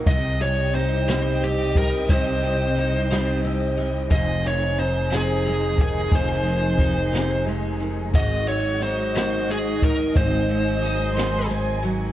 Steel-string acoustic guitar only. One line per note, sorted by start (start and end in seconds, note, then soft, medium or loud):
0.00 0.14 F#3 soft
0.00 0.13 A#3 medium
0.00 0.74 D#4 medium
0.07 2.07 C3 medium
0.41 1.06 G3 medium
0.74 2.76 D#4 medium
1.08 1.75 G3 medium
1.42 3.44 C4 medium
1.76 2.41 G3 medium
2.08 4.11 C3 medium
2.42 3.09 G3 medium
2.76 4.78 D#4 medium
3.10 3.76 G3 medium
3.44 5.46 C4 medium
3.77 4.18 G3 medium
4.12 6.12 F2 medium
4.44 5.80 D#3 medium
4.79 6.78 D#4 medium
5.13 7.10 C3 medium
5.46 7.46 G#3 medium
5.80 6.46 D#3 medium
6.13 8.13 F2 medium
6.47 7.79 D#3 medium
6.79 8.80 D#4 medium
7.12 8.20 C3 medium
7.46 8.50 G#3 medium
7.80 8.47 D#3 soft
8.13 10.14 G#2 medium
8.47 9.80 F#3 medium
8.81 10.83 D#4 medium
9.14 11.15 D#3 medium
9.48 11.48 C4 medium
9.80 10.49 F#3 medium
10.15 12.12 G#2 medium
10.49 11.82 F#3 medium
10.83 12.12 D#4 medium
11.15 12.12 D#3 medium
11.49 12.12 C4 medium
11.83 12.12 F#3 medium